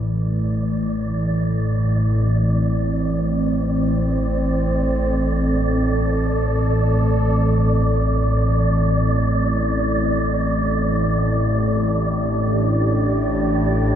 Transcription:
Already playing: A1 A2 E3 D5
2.02 C4
4.48 A4
11.41 G4
12.12 D4

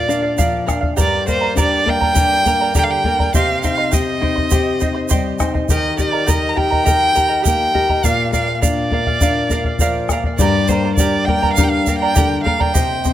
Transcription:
Already playing: A#2 D5
0.08 D4 A#4 D5 F5, shaker
0.22 D5 F5
0.38 F3 A#4 D5 F5, bombo low, shaker
0.66 D4 A#4 D5 F5, bombo rim, bombo low, shaker
0.81 D5 F5, bombo low
0.96 G2 G4 A#4 D5 G5 A#5, bombo low, shaker
1.02 D5
1.27 A#3 A#4 C5 D5 G5 A#5, bombo low, shaker
1.40 A#4 D5 A#5
1.55 D4 G4 A#4 D5 G5 A#5, bombo low, shaker
1.60 D5
1.86 A#3 A#4 D5 G5 A#5, bombo low
2.01 A#4 D5 A#5, bombo low
2.15 D4 G4 A#4 D5 G5 A#5, bombo low, shaker
2.45 A#3 A#4 D5 G5 A#5, bombo low, shaker
2.61 A#4 D5 A#5
2.74 D3 G4 A#4 D5 G5 A#5, bombo low, shaker
2.84 F5
2.91 G5
3.04 A#3 A#4 D5 G5 A#5, bombo low
3.19 A#4 D5 A#5, bombo low
3.34 C3 G4 C5 D#5 F5 G5 C6, bombo low, shaker
3.63 D#4 C5 D#5 F5 G5 C6, bombo low, shaker
3.78 C5 D#5 C6
3.91 G4 C5 D#5 G5 C6, bombo low, shaker
4.21 D#4 C5 D#5 G5 C6, bombo low
4.36 C5 D#5 C6, bombo low
4.50 G4 C5 D#5 G5 C6, bombo low, shaker
4.80 D#4 C5 D#5 G5 C6, bombo low, shaker
4.94 C5 D#5 C6
5.09 G3 G4 C5 D#5 G5 C6, bombo low, shaker
5.39 D#4 C5 D#5 G5 C6, bombo rim, bombo low, shaker
5.54 C5 D#5 C6, bombo low
5.69 D#3 G4 A#4 D#5 G5 A#5, bombo low, shaker
5.97 G4 A#4 D5 D#5 G5 A#5, bombo low, shaker
6.12 A#4 D#5 A#5
6.26 G4 A#4 D#5 G5 A#5, bombo low, shaker
6.49 A#5
6.55 G4 A#4 D#5 G5 A#5, bombo low
6.70 A#4 D#5 A#5, bombo low
6.85 G4 A#4 D#5 G5 A#5, bombo low, shaker
7.14 G4 A#4 D#5 G5 A#5, bombo low, shaker
7.28 A#4 D#5 A#5
7.42 G4 A#4 D#5 G5 A#5, bombo low, shaker
7.46 A#3 G5
7.73 G4 A#4 D#5 G5 A#5, bombo low
7.89 A#4 D#5 A#5, bombo low
8.04 A#2 A#4 D5 F5, bombo low, shaker
8.32 A#3 A#4 D5 F5, bombo low, shaker
8.48 D5 F5
8.55 F5
8.61 D4 A#4 D5 F5, bombo low, shaker
8.91 A#3 A#4 D5 F5, bombo low
9.07 D5 F5, bombo low
9.21 D4 A#4 D5 F5, bombo low, shaker
9.49 A#3 A#4 D5 F5, bombo low, shaker
9.64 D5 F5, bombo low
9.79 F3 A#4 D5 F5, bombo low, shaker
10.08 A#3 A#4 D5, bombo rim, bombo low, shaker
10.12 F5
10.24 D5 F5, bombo low
10.39 G2 G4 A#4 D5 G5 A#5, bombo low, shaker
10.68 A#3 A#4 C5 D5 G5 A#5, bombo low, shaker
10.84 A#4 D5 A#5
10.96 D4 G4 A#4 D5 G5 A#5, bombo low, shaker
11.25 A#3 A#4 D5 G5 A#5, bombo low
11.42 A#4 D5 A#5, bombo low
11.53 F5, shaker
11.58 D4 G4 A#4 D5 G5 A#5, bombo low
11.64 G5
11.70 F5
11.86 A#3 A#4 D5 G5 A#5, bombo low, shaker
11.99 D5 G5 A#5
12.03 A#4
12.15 D3 G4 A#4 D5 G5 A#5, bombo low, shaker
12.44 A#3 A#4 D5 F5 G5 A#5, bombo low
12.59 A#4 D5 G5 A#5, bombo low
12.74 C3 G4 C5 D#5 G5 C6, bombo low, shaker
13.04 C4 C5 D#5 G5 C6, bombo low, shaker

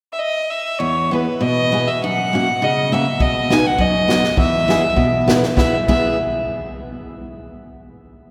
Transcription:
0.13 E5
0.19 D#5
0.50 E5
0.79 E2 C#5
1.11 B3 E4 G#4 B4
1.41 B2 D#5
1.72 B3 E4 G#4
1.88 E5
2.04 F#2 F#5
2.33 A#3 C#4 F#4
2.62 C#3 D#5
2.92 A#3 C#4 F#4 E5
3.20 B2 D#5, kick
3.50 B3 D#4 F#4 G#5, snare
3.67 F#5
3.78 F#2 D#5, kick
4.08 B3 D#4 F#4, snare
4.24 snare
4.37 E2 E5, kick
4.68 B3 E4 G#4, snare
4.96 B2, kick
5.28 B3 E4 G#4, snare
5.43 snare
5.57 B3 E4 G#4 E5, kick, snare
5.88 B3 E4 G#4 E5, kick, crash

